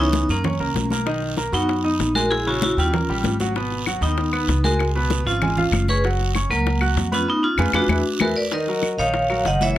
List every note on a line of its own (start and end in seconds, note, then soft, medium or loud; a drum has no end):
0.00 0.23 C#2 medium
0.00 0.24 E3 medium
0.00 0.27 B3 medium
0.00 0.24 C#4 medium
0.00 0.27 D#4 loud
0.00 0.24 C#5 medium
0.13 high bongo medium
0.13 high conga loud
0.13 short guiro medium
0.29 0.58 F#2 medium
0.29 0.42 A#3 medium
0.29 0.88 A#3 medium
0.29 0.88 C#4 medium
0.29 0.42 A#4 medium
0.29 0.43 A#5 medium
0.29 high bongo soft
0.29 high conga soft
0.29 short guiro medium
0.44 0.57 C#4 medium
0.44 0.58 C#5 medium
0.44 0.58 C#6 medium
0.44 high bongo medium
0.44 high conga soft
0.44 low conga medium
0.44 long guiro medium
0.60 0.74 C#2 medium
0.60 0.85 A#3 medium
0.60 0.85 A#4 medium
0.60 0.86 A#5 medium
0.60 high conga soft
0.74 1.47 B1 medium
0.74 high bongo medium
0.74 low bongo medium
0.74 high conga medium
0.74 short guiro medium
0.90 1.04 A#3 medium
0.90 1.04 A#4 medium
0.90 1.04 A#5 medium
0.90 high bongo soft
0.90 high conga medium
0.90 short guiro medium
1.06 1.32 D#3 medium
1.06 1.32 D#4 medium
1.06 1.32 D#5 medium
1.06 high bongo medium
1.06 high conga soft
1.06 long guiro medium
1.22 high bongo soft
1.22 high conga soft
1.37 1.50 A#3 medium
1.37 1.50 A#4 medium
1.37 1.50 A#5 medium
1.37 high bongo medium
1.37 high conga medium
1.37 short guiro medium
1.52 1.96 F#2 medium
1.52 1.78 F#3 medium
1.52 2.12 B3 medium
1.52 2.12 D#4 medium
1.52 1.78 F#4 medium
1.52 1.79 F#5 medium
1.52 high bongo soft
1.52 short guiro medium
1.69 high bongo medium
1.69 high conga soft
1.69 long guiro medium
1.84 2.10 D#4 medium
1.84 2.10 D#5 medium
1.84 2.10 D#6 medium
1.84 high conga soft
1.99 2.72 A#1 medium
1.99 high bongo medium
1.99 low bongo medium
1.99 high conga soft
1.99 short guiro medium
2.15 2.41 G#3 medium
2.15 2.30 F#4 medium
2.15 2.41 G#4 medium
2.15 2.30 A#4 loud
2.15 2.41 G#5 medium
2.15 high bongo soft
2.15 high conga medium
2.15 short guiro medium
2.31 2.45 E4 medium
2.31 2.45 G#4 loud
2.31 high bongo medium
2.31 high conga soft
2.31 long guiro medium
2.47 2.72 C#3 medium
2.47 2.72 C#4 medium
2.47 2.55 E4 medium
2.47 2.54 F#4 medium
2.47 2.72 C#5 medium
2.47 high bongo soft
2.47 high conga soft
2.62 2.70 E4 medium
2.62 2.70 F#4 loud
2.62 high bongo medium
2.62 high conga loud
2.62 short guiro medium
2.77 3.06 D#2 medium
2.77 2.91 G3 medium
2.77 3.37 C#4 medium
2.77 3.37 F4 medium
2.77 2.91 G4 medium
2.77 2.91 G5 medium
2.77 high bongo soft
2.77 high conga soft
2.77 short guiro medium
2.93 3.06 A#3 medium
2.93 3.06 A#4 medium
2.93 3.06 A#5 medium
2.93 high bongo medium
2.93 high conga soft
2.93 low conga medium
2.93 long guiro medium
3.08 3.23 A#1 medium
3.08 3.34 G3 medium
3.08 3.35 G4 medium
3.08 3.35 G5 medium
3.08 high conga soft
3.24 3.96 G#1 medium
3.24 high bongo medium
3.24 low bongo medium
3.24 high conga medium
3.24 short guiro medium
3.40 3.53 F#3 medium
3.40 3.53 F#4 medium
3.40 3.53 F#5 medium
3.40 high bongo soft
3.40 high conga medium
3.40 short guiro medium
3.56 3.81 B2 medium
3.56 3.81 B3 medium
3.56 3.81 B4 medium
3.56 high bongo medium
3.56 high conga soft
3.56 long guiro medium
3.71 high bongo soft
3.71 high conga soft
3.86 4.00 F#3 medium
3.86 4.00 F#4 medium
3.86 4.00 F#5 medium
3.86 high bongo medium
3.86 high conga medium
3.86 short guiro medium
3.86 claves medium
4.01 4.45 D#2 medium
4.01 4.27 D#3 medium
4.01 4.61 B3 medium
4.01 4.27 D#4 medium
4.01 4.60 D#4 medium
4.01 4.28 D#5 medium
4.01 high bongo soft
4.01 short guiro medium
4.18 high bongo medium
4.18 high conga soft
4.18 long guiro medium
4.33 4.58 B3 medium
4.33 4.58 B4 medium
4.33 4.58 B5 medium
4.33 high conga soft
4.33 claves medium
4.48 5.20 C#2 medium
4.48 high bongo medium
4.48 low bongo medium
4.48 high conga soft
4.48 short guiro medium
4.64 4.89 G#3 medium
4.64 4.72 F#4 medium
4.64 4.90 G#4 medium
4.64 4.71 A#4 loud
4.64 4.90 G#5 medium
4.64 high bongo soft
4.64 high conga medium
4.64 short guiro medium
4.79 high bongo medium
4.79 long guiro medium
4.79 claves medium
4.95 5.21 B2 medium
4.95 5.21 B3 medium
4.95 5.21 B4 medium
4.95 high bongo soft
4.95 high conga soft
5.10 high bongo medium
5.10 high conga loud
5.10 short guiro medium
5.25 5.69 G#1 medium
5.25 5.39 F3 medium
5.25 5.85 C#4 medium
5.25 5.39 F4 medium
5.25 5.84 F4 medium
5.25 5.39 F5 medium
5.25 high bongo soft
5.25 high conga soft
5.25 short guiro medium
5.42 5.55 G#3 medium
5.42 5.55 G#4 medium
5.42 5.55 G#5 medium
5.42 high bongo medium
5.42 high conga soft
5.42 low conga medium
5.42 long guiro medium
5.42 claves medium
5.57 5.83 F3 medium
5.57 5.83 F4 medium
5.57 5.83 F5 medium
5.57 high conga soft
5.57 low conga medium
5.71 6.44 F#1 medium
5.71 high bongo medium
5.71 low bongo medium
5.71 high conga medium
5.71 short guiro medium
5.71 claves medium
5.88 6.01 C#4 medium
5.88 6.04 G#4 medium
5.88 6.03 B4 loud
5.88 6.02 C#5 medium
5.88 6.02 C#6 medium
5.88 high bongo soft
5.88 high conga medium
5.88 short guiro medium
6.04 6.30 F#3 medium
6.04 6.30 F#4 medium
6.04 6.30 F#5 medium
6.04 high bongo medium
6.04 high conga soft
6.04 long guiro medium
6.20 high bongo soft
6.20 high conga soft
6.35 6.48 C#4 medium
6.35 6.48 C#5 medium
6.35 6.48 C#6 medium
6.35 high bongo medium
6.35 high conga medium
6.35 short guiro medium
6.35 claves medium
6.50 6.93 C#2 medium
6.50 7.08 F#3 medium
6.50 6.76 A#3 medium
6.50 7.09 A#3 medium
6.50 6.76 A#4 medium
6.50 6.76 A#5 medium
6.50 high bongo soft
6.50 short guiro medium
6.66 high bongo medium
6.66 high conga soft
6.66 long guiro medium
6.81 7.07 F#4 medium
6.81 7.07 F#5 medium
6.81 7.07 F#6 medium
6.81 high conga soft
6.81 claves medium
6.96 7.25 F2 medium
6.96 high bongo medium
6.96 low bongo medium
6.96 high conga soft
6.96 short guiro medium
7.12 7.25 B3 medium
7.12 7.27 C#4 medium
7.12 7.28 F4 medium
7.12 7.25 B4 medium
7.12 7.25 B5 medium
7.12 high bongo soft
7.12 high conga medium
7.12 short guiro medium
7.28 7.35 B3 medium
7.28 7.36 D#4 loud
7.43 7.72 C#4 medium
7.43 7.73 F4 loud
7.58 7.70 F2 loud
7.58 7.69 F4 loud
7.58 7.69 G#4 loud
7.58 7.69 B4 loud
7.58 high bongo medium
7.58 high conga loud
7.58 long guiro loud
7.58 claves medium
7.73 7.85 F2 medium
7.73 8.18 D4 medium
7.73 7.84 F4 loud
7.73 8.19 F#4 loud
7.73 7.84 G#4 loud
7.73 7.84 B4 loud
7.73 high bongo loud
7.73 high conga loud
7.73 long guiro medium
7.73 claves loud
7.88 8.01 E2 loud
7.88 8.00 E4 loud
7.88 7.99 G#4 loud
7.88 8.00 B4 loud
7.88 high bongo loud
7.88 high conga loud
7.88 long guiro loud
7.88 claves medium
8.20 8.32 E2 medium
8.20 8.31 E4 medium
8.20 8.36 F#4 medium
8.20 8.31 G#4 loud
8.20 8.36 A#4 loud
8.20 8.31 B4 loud
8.20 high bongo loud
8.20 high conga loud
8.20 long guiro loud
8.20 claves medium
8.36 8.44 B4 medium
8.36 8.43 D5 loud
8.52 8.65 D#3 medium
8.52 8.65 D#4 medium
8.52 8.96 A#4 medium
8.52 9.00 D#5 loud
8.52 8.65 D#5 medium
8.52 high bongo medium
8.52 high conga soft
8.52 long guiro medium
8.67 8.94 F#3 medium
8.67 8.94 F#4 medium
8.67 8.94 A#4 medium
8.67 high bongo soft
8.67 high conga soft
8.82 high bongo medium
8.82 high conga medium
8.82 short guiro medium
8.82 claves medium
8.98 9.42 A#1 medium
8.98 9.25 D#3 medium
8.98 9.25 D#4 medium
8.98 9.42 C#5 medium
8.98 9.25 D#5 medium
8.98 9.42 F5 loud
8.98 high bongo soft
8.98 short guiro medium
9.14 high bongo medium
9.14 high conga soft
9.14 long guiro medium
9.30 9.42 F#3 medium
9.30 9.43 F#4 medium
9.30 9.43 A#4 medium
9.30 high conga soft
9.30 claves medium
9.45 9.78 F#1 medium
9.45 9.58 D#3 medium
9.45 9.58 D#4 medium
9.45 9.58 D#5 medium
9.45 9.54 D#5 medium
9.45 9.53 F#5 loud
9.45 high bongo medium
9.45 low bongo medium
9.45 high conga soft
9.45 short guiro medium
9.61 9.78 E3 medium
9.61 9.78 E4 medium
9.61 9.78 C#5 medium
9.61 9.78 E5 medium
9.61 9.78 E5 loud
9.61 high bongo soft
9.61 high conga medium
9.61 short guiro medium